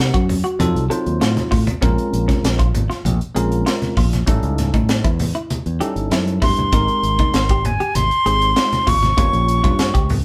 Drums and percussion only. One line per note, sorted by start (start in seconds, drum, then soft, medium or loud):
0.00 snare loud
0.14 kick medium
0.14 closed hi-hat soft
0.29 open hi-hat medium
0.29 low conga medium
0.45 closed hi-hat soft
0.60 closed hi-hat medium
0.60 high conga medium
0.76 closed hi-hat soft
0.91 closed hi-hat medium
1.06 closed hi-hat soft
1.21 snare loud
1.21 closed hi-hat medium
1.37 snare soft
1.37 closed hi-hat soft
1.37 high conga medium
1.52 kick medium
1.52 open hi-hat medium
1.52 low conga medium
1.67 closed hi-hat soft
1.67 high conga medium
1.82 kick loud
1.82 closed hi-hat medium
1.82 low conga medium
1.98 closed hi-hat soft
2.14 closed hi-hat medium
2.29 kick medium
2.29 snare soft
2.29 closed hi-hat soft
2.29 high conga medium
2.44 snare loud
2.44 closed hi-hat medium
2.59 kick medium
2.59 closed hi-hat soft
2.75 closed hi-hat medium
2.75 low conga medium
2.91 snare soft
2.91 closed hi-hat soft
3.05 closed hi-hat medium
3.05 high conga medium
3.21 closed hi-hat soft
3.36 closed hi-hat medium
3.52 closed hi-hat soft
3.66 snare loud
3.66 closed hi-hat medium
3.82 snare soft
3.82 closed hi-hat soft
3.82 high conga medium
3.97 kick medium
3.97 open hi-hat medium
3.97 low conga medium
4.13 snare soft
4.13 closed hi-hat soft
4.13 high conga medium
4.27 kick loud
4.27 closed hi-hat medium
4.27 low conga medium
4.43 closed hi-hat soft
4.58 snare soft
4.58 closed hi-hat medium
4.58 low conga medium
4.74 kick medium
4.74 closed hi-hat soft
4.74 high conga medium
4.89 snare loud
4.89 closed hi-hat medium
5.04 kick medium
5.04 closed hi-hat soft
5.19 open hi-hat medium
5.19 high conga medium
5.19 low conga medium
5.35 closed hi-hat soft
5.50 closed hi-hat medium
5.50 high conga medium
5.66 closed hi-hat soft
5.81 closed hi-hat medium
5.96 closed hi-hat soft
6.11 snare medium
6.11 closed hi-hat medium
6.27 closed hi-hat soft
6.42 kick medium
6.42 open hi-hat medium
6.42 low conga medium
6.57 closed hi-hat soft
6.57 high conga medium
6.72 kick loud
6.72 closed hi-hat medium
6.72 low conga medium
6.88 closed hi-hat soft
7.03 closed hi-hat medium
7.19 kick medium
7.19 closed hi-hat soft
7.19 high conga medium
7.34 snare loud
7.34 closed hi-hat medium
7.49 kick medium
7.49 closed hi-hat soft
7.65 closed hi-hat medium
7.65 low conga medium
7.80 closed hi-hat soft
7.95 closed hi-hat medium
7.95 high conga medium
8.11 closed hi-hat soft
8.26 closed hi-hat medium
8.42 closed hi-hat soft
8.56 snare loud
8.56 closed hi-hat medium
8.72 snare soft
8.72 closed hi-hat soft
8.72 high conga medium
8.87 kick medium
8.87 open hi-hat medium
8.87 low conga medium
9.03 snare soft
9.03 closed hi-hat soft
9.03 high conga medium
9.18 kick loud
9.18 closed hi-hat medium
9.18 low conga medium
9.33 closed hi-hat soft
9.48 closed hi-hat medium
9.64 kick medium
9.64 closed hi-hat soft
9.64 high conga medium
9.79 snare loud
9.79 closed hi-hat medium
9.95 kick medium
9.95 closed hi-hat soft
10.09 open hi-hat medium
10.09 low conga medium